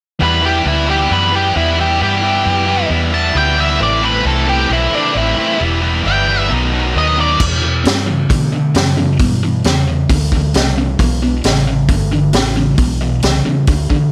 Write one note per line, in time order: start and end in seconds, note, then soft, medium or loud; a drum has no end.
0.20 0.64 E2 medium
0.20 0.42 E3 medium
0.20 0.42 G3 medium
0.20 0.43 B3 medium
0.20 0.43 E4 medium
0.20 0.44 B4 medium
0.42 0.64 E3 medium
0.42 0.65 G3 medium
0.42 0.65 B3 medium
0.42 0.66 E4 medium
0.42 0.66 G4 medium
0.65 1.09 D2 medium
0.65 0.87 E3 medium
0.65 0.87 G3 medium
0.65 0.88 B3 medium
0.65 0.88 E4 medium
0.87 1.09 E3 medium
0.87 1.10 G3 medium
0.87 1.10 B3 medium
0.87 1.10 E4 medium
0.87 1.11 G4 medium
1.10 1.54 F#2 medium
1.10 1.32 E3 medium
1.10 1.32 G3 medium
1.10 1.33 B3 medium
1.10 1.33 E4 medium
1.10 1.33 B4 medium
1.32 1.54 E3 medium
1.32 1.54 G3 medium
1.32 1.55 B3 medium
1.32 1.55 E4 medium
1.32 1.56 G4 medium
1.55 1.99 E2 medium
1.55 1.77 E3 medium
1.55 1.77 G3 medium
1.55 1.77 B3 medium
1.55 1.78 E4 medium
1.77 1.99 E3 medium
1.77 1.99 G3 medium
1.77 2.00 B3 medium
1.77 2.01 E4 medium
1.77 2.01 G4 medium
2.00 2.44 G2 medium
2.00 2.22 E3 medium
2.00 2.22 G3 medium
2.00 2.23 B3 medium
2.00 2.23 E4 medium
2.00 2.89 G4 medium
2.22 2.44 E3 medium
2.22 2.45 G3 medium
2.22 2.45 B3 medium
2.22 2.46 E4 medium
2.44 2.89 F#2 medium
2.44 2.67 E3 medium
2.44 2.67 G3 medium
2.44 2.67 B3 medium
2.44 2.68 E4 medium
2.67 2.90 E3 medium
2.67 2.90 G3 medium
2.67 2.90 B3 medium
2.67 2.91 E4 medium
2.90 3.34 E2 medium
2.90 3.11 E3 medium
2.90 3.12 G3 medium
2.90 3.12 B3 medium
2.90 3.13 E4 medium
3.12 3.34 E3 medium
3.12 3.34 G3 medium
3.12 3.35 B3 medium
3.12 3.35 E4 medium
3.12 3.35 A5 medium
3.34 3.79 D2 medium
3.34 3.57 E3 medium
3.34 3.57 G3 medium
3.34 3.58 B3 medium
3.34 3.58 E4 medium
3.34 3.58 G5 medium
3.58 3.79 E3 medium
3.58 3.80 G3 medium
3.58 3.80 B3 medium
3.58 3.81 E4 medium
3.58 3.81 E5 medium
3.79 4.24 A1 medium
3.79 4.00 A2 medium
3.79 4.01 E3 medium
3.79 4.01 A3 medium
3.79 4.02 C4 medium
3.79 4.02 E4 loud
3.79 4.03 D5 medium
4.02 4.22 A2 medium
4.02 4.23 E3 medium
4.02 4.23 A3 medium
4.02 4.24 C4 medium
4.02 4.24 E4 medium
4.02 4.25 B4 medium
4.24 4.69 C2 medium
4.24 4.46 A2 medium
4.24 4.46 E3 medium
4.24 4.47 A3 medium
4.24 4.47 C4 medium
4.24 4.47 E4 medium
4.24 4.48 A4 medium
4.47 4.68 A2 medium
4.47 4.69 E3 medium
4.47 4.69 A3 medium
4.47 4.69 C4 medium
4.47 4.70 E4 medium
4.47 4.70 G4 medium
4.70 4.91 B1 medium
4.70 4.90 A2 medium
4.70 4.91 E3 medium
4.70 4.91 A3 medium
4.70 4.92 C4 medium
4.70 4.92 E4 medium
4.70 4.94 E4 medium
4.92 5.13 A2 medium
4.92 5.13 E3 medium
4.92 5.14 A3 medium
4.92 5.14 C4 medium
4.92 5.16 D4 medium
4.92 5.14 E4 medium
5.14 5.36 A1 medium
5.14 5.36 A2 medium
5.14 5.36 E3 medium
5.14 5.37 A3 medium
5.14 5.37 C4 medium
5.14 5.37 E4 medium
5.14 5.60 E4 medium
5.37 5.59 A2 medium
5.37 5.58 E3 medium
5.37 5.59 A3 medium
5.37 5.59 C4 medium
5.37 5.59 E4 medium
5.37 muted fingered electric bass stroke soft
5.59 6.04 E1 medium
5.59 5.80 E3 medium
5.59 5.81 G3 medium
5.59 5.81 B3 medium
5.59 5.82 E4 medium
5.82 6.03 E3 medium
5.82 6.04 G3 medium
5.82 6.04 B3 medium
5.82 6.05 E4 medium
6.04 6.49 G1 medium
6.04 6.26 E3 medium
6.04 6.27 G3 medium
6.04 6.28 B3 medium
6.04 6.28 E4 medium
6.04 6.50 G5 loud
6.28 6.49 E3 medium
6.28 6.49 G3 medium
6.28 6.50 B3 medium
6.28 6.50 E4 medium
6.50 6.94 B1 medium
6.50 6.72 B2 medium
6.50 6.72 D#3 medium
6.50 6.72 F#3 medium
6.50 6.73 B3 medium
6.50 6.73 D#4 medium
6.73 6.93 B2 medium
6.73 6.94 D#3 medium
6.73 6.94 F#3 medium
6.73 6.95 B3 medium
6.73 6.95 D#4 medium
6.95 7.39 D#2 medium
6.95 7.16 B2 medium
6.95 7.17 D#3 medium
6.95 7.17 F#3 medium
6.95 7.17 B3 medium
6.95 7.18 D#4 medium
6.95 7.19 D#5 medium
7.18 7.39 B2 medium
7.18 7.39 D#3 medium
7.18 7.39 F#3 medium
7.18 7.39 B3 medium
7.18 7.40 D#4 medium
7.18 7.41 D5 medium
7.40 7.84 E2 medium
7.40 7.60 E2 medium
7.40 7.61 B2 medium
7.40 kick loud
7.40 crash medium
7.62 7.83 E2 medium
7.62 7.83 B2 medium
7.84 8.05 E2 medium
7.84 8.29 G2 medium
7.84 8.05 C#3 medium
7.84 snare loud
7.84 open hi-hat soft
8.07 8.28 E2 medium
8.07 8.28 C#3 medium
8.30 8.50 E2 medium
8.30 8.74 B2 medium
8.30 8.50 D3 medium
8.30 kick loud
8.30 open hi-hat soft
8.53 8.73 E2 medium
8.53 8.73 D3 medium
8.74 8.95 E2 medium
8.74 9.18 F#2 medium
8.74 8.95 C#3 medium
8.74 snare loud
8.74 open hi-hat soft
8.97 9.17 E2 medium
8.97 9.18 C#3 medium
9.19 9.40 E2 medium
9.19 9.63 G2 medium
9.19 9.40 B2 medium
9.19 kick loud
9.19 open hi-hat soft
9.43 9.63 E2 medium
9.43 9.63 B2 medium
9.64 10.08 E2 medium
9.64 9.85 E2 medium
9.64 9.85 C#3 medium
9.64 snare medium
9.64 open hi-hat soft
9.87 10.07 E2 medium
9.87 10.08 C#3 medium
10.09 10.53 D2 medium
10.09 10.30 E2 medium
10.09 10.30 D3 medium
10.09 kick loud
10.09 open hi-hat soft
10.32 10.52 E2 medium
10.32 10.53 D3 medium
10.32 kick medium
10.54 10.98 C2 medium
10.54 10.74 E2 medium
10.54 10.75 C#3 medium
10.54 snare loud
10.54 open hi-hat soft
10.78 10.97 E2 medium
10.78 10.97 C#3 medium
10.99 11.43 B1 medium
10.99 11.20 E2 medium
10.99 11.20 B2 medium
10.99 kick loud
10.99 open hi-hat soft
11.22 11.42 E2 medium
11.22 11.42 B2 medium
11.44 11.88 A1 medium
11.44 11.64 E2 medium
11.44 11.65 C#3 medium
11.44 snare loud
11.44 open hi-hat soft
11.67 11.87 E2 medium
11.67 11.87 C#3 medium
11.88 12.32 G1 medium
11.88 12.09 E2 medium
11.88 12.09 D3 medium
11.88 kick loud
11.88 open hi-hat soft
12.11 12.31 E2 medium
12.11 12.32 D3 medium
12.33 12.77 A1 medium
12.33 12.53 E2 medium
12.33 12.54 C#3 medium
12.33 snare loud
12.33 open hi-hat soft
12.56 12.76 E2 medium
12.56 12.76 C#3 medium
12.78 13.22 B1 medium
12.78 12.98 E2 medium
12.78 12.99 B2 medium
12.78 kick loud
12.78 open hi-hat soft
13.01 13.21 E2 medium
13.01 13.21 B2 medium
13.22 13.44 C2 medium
13.22 13.43 E2 medium
13.22 13.43 C#3 medium
13.22 snare medium
13.22 open hi-hat soft
13.45 13.66 E2 medium
13.45 13.66 C#3 medium
13.67 13.89 D2 medium
13.67 13.88 E2 medium
13.67 13.88 D3 medium
13.67 kick loud
13.67 open hi-hat soft
13.90 14.10 E2 medium
13.90 14.11 D3 medium
13.90 kick medium